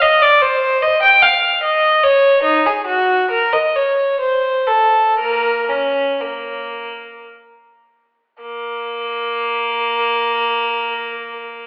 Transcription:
\new Staff \with { instrumentName = "Violin" } { \time 3/4 \key bes \minor \tempo 4 = 59 ees''16 d''16 c''8 ees''16 g''16 f''8 ees''8 des''8 | ees'16 aes'16 ges'8 bes'16 ees''16 des''8 c''8 a'8 | <bes bes'>8 des'8 bes4 r4 | bes2. | }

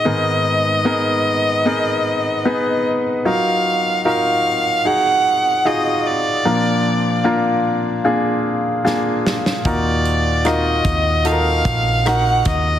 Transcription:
<<
  \new Staff \with { instrumentName = "Violin" } { \time 4/4 \key ees \minor \tempo 4 = 75 ees''2.~ ees''8 r8 | f''4 f''4 ges''4 ees''8 d''8~ | d''4 r2. | d''4 ees''4 f''4 ges''8 ees''8 | }
  \new Staff \with { instrumentName = "Grand piano" } { \time 4/4 \key ees \minor <ces' ees' aes' bes'>4 <ces' ees' aes' bes'>4 <ces' ees' aes' bes'>4 <ces' ees' aes' ces''>4 | <ees' f' ges' bes'>4 <ees' f' ges' bes'>4 <ees' ges' aes'>4 <ees' f' ges' aes'>4 | <bes d' f' bes'>4 <bes d' f' bes'>4 <bes d' f' aes'>4 <bes d' f' aes'>4 | <ees' f' ges' bes'>4 <ees' f' ges' bes'>4 <ees' f' ges' a' bes'>4 <ees' ges' bes'>4 | }
  \new Staff \with { instrumentName = "Grand piano" } { \clef bass \time 4/4 \key ees \minor <aes, ees>4. r2 r8 | ges4. r2 r8 | <bes, f>4. r2 r8 | bes,4. r2 r8 | }
  \new Staff \with { instrumentName = "Fingered electric bass" } { \clef bass \time 4/4 \key ees \minor r1 | r1 | r1 | ees,4. ees,4 bes,,4 ees,8 | }
  \new DrumStaff \with { instrumentName = "Drums" } \drummode { \time 4/4 r4 r4 r4 r4 | r4 r4 r4 r4 | r4 r4 r4 sn8 sn16 sn16 | <hh bd>8 hh8 <hh ss>8 <hh bd>8 hh8 <hh bd>8 <hh ss>8 <hh bd>8 | }
>>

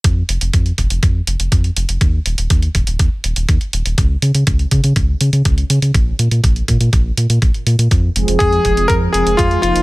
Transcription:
<<
  \new Staff \with { instrumentName = "Electric grand piano" } { \time 4/4 \key f \minor \tempo 4 = 122 r1 | r1 | r1 | r1 |
r4 aes'4 bes'8 aes'8 f'8 f'8 | }
  \new Staff \with { instrumentName = "Analog polysynth" } { \time 4/4 \key f \minor r1 | r1 | r1 | r1 |
r8 <f aes c' aes'>4 <f aes c' aes'>4 <f aes c' aes'>8. <f aes c' aes'>16 <f bes ees' c''>8 | }
  \new Staff \with { instrumentName = "Analog synth bass" } { \clef bass \time 4/4 \key f \minor f,8 f,,16 f,,16 f,8 f,,16 f,,16 f,8 f,,16 f,,16 f,8 f,,16 f,,16 | ees,8 ees,,16 ees,,16 ees,8 ees,,16 ees,,16 ees,16 r16 ees,,16 ees,,16 ees,16 r16 ees,,16 ees,,16 | des,8 des16 des16 des,8 des16 des16 des,8 des16 des16 des,8 des16 des16 | bes,,8 bes,16 bes,16 bes,,8 bes,16 bes,16 bes,,8 bes,16 bes,16 bes,,16 r16 bes,16 bes,16 |
f,8 f,,16 f,,16 f,8 f,,16 f,,16 f,8 f,,16 f,,16 f,8 f,,16 f,,16 | }
  \new DrumStaff \with { instrumentName = "Drums" } \drummode { \time 4/4 <hh bd>8 hh16 hh16 <hh bd>16 hh16 <hh bd>16 hh16 <hh bd>8 hh16 hh16 <hh bd>16 hh16 hh16 hh16 | <hh bd>8 hh16 hh16 <hh bd>16 hh16 <hh bd>16 hh16 <hh bd>8 hh16 hh16 <hh bd>16 hh16 hh16 hh16 | <hh bd>8 hh16 hh16 <hh bd>16 hh16 <hh bd>16 hh16 <hh bd>8 hh16 hh16 <hh bd>16 hh16 hh16 hh16 | <hh bd>8 hh16 hh16 <hh bd>16 hh16 <hh bd>16 hh16 <hh bd>8 hh16 hh16 <hh bd>16 hh16 hh16 hh16 |
<hh bd>8 hh16 hh16 <hh bd>16 hh16 <hh bd>16 hh16 <hh bd>8 hh16 hh16 <hh bd>16 hh16 hh16 hh16 | }
>>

